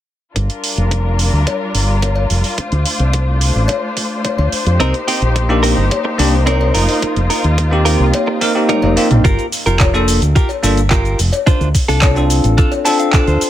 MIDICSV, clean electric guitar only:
0, 0, Header, 1, 3, 480
1, 0, Start_track
1, 0, Key_signature, -2, "minor"
1, 0, Tempo, 555556
1, 310, Time_signature, 4, 2, 24, 8
1, 11663, End_track
2, 0, Start_track
2, 0, Title_t, "Clean electric guitar"
2, 0, Program_c, 0, 27
2, 4145, Note_on_c, 0, 60, 110
2, 4150, Note_on_c, 0, 63, 88
2, 4154, Note_on_c, 0, 70, 98
2, 4269, Note_off_c, 0, 60, 0
2, 4270, Note_off_c, 0, 63, 0
2, 4270, Note_off_c, 0, 70, 0
2, 4385, Note_on_c, 0, 67, 81
2, 4389, Note_on_c, 0, 63, 65
2, 4392, Note_on_c, 0, 60, 69
2, 4508, Note_off_c, 0, 60, 0
2, 4509, Note_off_c, 0, 63, 0
2, 4509, Note_off_c, 0, 67, 0
2, 4862, Note_on_c, 0, 70, 90
2, 4866, Note_on_c, 0, 63, 66
2, 4870, Note_on_c, 0, 60, 69
2, 5047, Note_off_c, 0, 60, 0
2, 5047, Note_off_c, 0, 63, 0
2, 5048, Note_off_c, 0, 70, 0
2, 5583, Note_on_c, 0, 60, 83
2, 5587, Note_on_c, 0, 63, 69
2, 5592, Note_on_c, 0, 70, 81
2, 5814, Note_off_c, 0, 63, 0
2, 5815, Note_off_c, 0, 70, 0
2, 5823, Note_on_c, 0, 70, 96
2, 5827, Note_off_c, 0, 60, 0
2, 5827, Note_on_c, 0, 65, 72
2, 5830, Note_on_c, 0, 63, 75
2, 6212, Note_off_c, 0, 63, 0
2, 6212, Note_off_c, 0, 65, 0
2, 6212, Note_off_c, 0, 70, 0
2, 6306, Note_on_c, 0, 70, 90
2, 6310, Note_on_c, 0, 65, 62
2, 6313, Note_on_c, 0, 63, 66
2, 6429, Note_off_c, 0, 63, 0
2, 6429, Note_off_c, 0, 65, 0
2, 6430, Note_off_c, 0, 70, 0
2, 6784, Note_on_c, 0, 70, 89
2, 6789, Note_on_c, 0, 65, 68
2, 6792, Note_on_c, 0, 63, 69
2, 6968, Note_off_c, 0, 63, 0
2, 6969, Note_off_c, 0, 65, 0
2, 6969, Note_off_c, 0, 70, 0
2, 7506, Note_on_c, 0, 63, 84
2, 7509, Note_on_c, 0, 65, 71
2, 7513, Note_on_c, 0, 70, 88
2, 7749, Note_off_c, 0, 63, 0
2, 7749, Note_off_c, 0, 65, 0
2, 7749, Note_off_c, 0, 70, 0
2, 7986, Note_on_c, 0, 65, 104
2, 7989, Note_on_c, 0, 67, 81
2, 7992, Note_on_c, 0, 70, 100
2, 8169, Note_off_c, 0, 65, 0
2, 8169, Note_off_c, 0, 67, 0
2, 8170, Note_off_c, 0, 70, 0
2, 8347, Note_on_c, 0, 70, 92
2, 8350, Note_on_c, 0, 67, 65
2, 8353, Note_on_c, 0, 65, 76
2, 8649, Note_off_c, 0, 65, 0
2, 8650, Note_off_c, 0, 67, 0
2, 8650, Note_off_c, 0, 70, 0
2, 8946, Note_on_c, 0, 65, 83
2, 8951, Note_on_c, 0, 67, 72
2, 8956, Note_on_c, 0, 70, 74
2, 9070, Note_off_c, 0, 65, 0
2, 9070, Note_off_c, 0, 67, 0
2, 9070, Note_off_c, 0, 70, 0
2, 9426, Note_on_c, 0, 65, 85
2, 9430, Note_on_c, 0, 67, 77
2, 9434, Note_on_c, 0, 70, 83
2, 9669, Note_off_c, 0, 65, 0
2, 9669, Note_off_c, 0, 67, 0
2, 9669, Note_off_c, 0, 70, 0
2, 9905, Note_on_c, 0, 62, 108
2, 9909, Note_on_c, 0, 65, 97
2, 9913, Note_on_c, 0, 72, 99
2, 10088, Note_off_c, 0, 62, 0
2, 10089, Note_off_c, 0, 65, 0
2, 10090, Note_off_c, 0, 72, 0
2, 10268, Note_on_c, 0, 69, 91
2, 10272, Note_on_c, 0, 65, 70
2, 10274, Note_on_c, 0, 62, 70
2, 10569, Note_off_c, 0, 62, 0
2, 10570, Note_off_c, 0, 65, 0
2, 10570, Note_off_c, 0, 69, 0
2, 10866, Note_on_c, 0, 62, 88
2, 10870, Note_on_c, 0, 65, 73
2, 10874, Note_on_c, 0, 69, 80
2, 10990, Note_off_c, 0, 62, 0
2, 10990, Note_off_c, 0, 65, 0
2, 10990, Note_off_c, 0, 69, 0
2, 11104, Note_on_c, 0, 81, 73
2, 11220, Note_off_c, 0, 81, 0
2, 11230, Note_on_c, 0, 77, 70
2, 11341, Note_off_c, 0, 77, 0
2, 11346, Note_on_c, 0, 62, 74
2, 11350, Note_on_c, 0, 65, 73
2, 11353, Note_on_c, 0, 69, 90
2, 11357, Note_on_c, 0, 74, 64
2, 11462, Note_off_c, 0, 74, 0
2, 11470, Note_on_c, 0, 72, 68
2, 11590, Note_off_c, 0, 62, 0
2, 11590, Note_off_c, 0, 65, 0
2, 11590, Note_off_c, 0, 69, 0
2, 11663, Note_off_c, 0, 72, 0
2, 11663, End_track
3, 0, Start_track
3, 0, Title_t, "Muted clean electric guitar strokes"
3, 4624, Note_on_c, 9, 29, 31
3, 4710, Note_off_c, 9, 29, 0
3, 4745, Note_on_c, 9, 29, 32
3, 4831, Note_off_c, 9, 29, 0
3, 5225, Note_on_c, 9, 29, 97
3, 5311, Note_off_c, 9, 29, 0
3, 5342, Note_on_c, 9, 29, 30
3, 5428, Note_off_c, 9, 29, 0
3, 6545, Note_on_c, 9, 29, 30
3, 6632, Note_off_c, 9, 29, 0
3, 6666, Note_on_c, 9, 29, 34
3, 6752, Note_off_c, 9, 29, 0
3, 7148, Note_on_c, 9, 29, 105
3, 7234, Note_off_c, 9, 29, 0
3, 7266, Note_on_c, 9, 29, 32
3, 7353, Note_off_c, 9, 29, 0
3, 9186, Note_on_c, 9, 29, 32
3, 9273, Note_off_c, 9, 29, 0
3, 11109, Note_on_c, 9, 29, 35
3, 11196, Note_off_c, 9, 29, 0
3, 11663, End_track
0, 0, End_of_file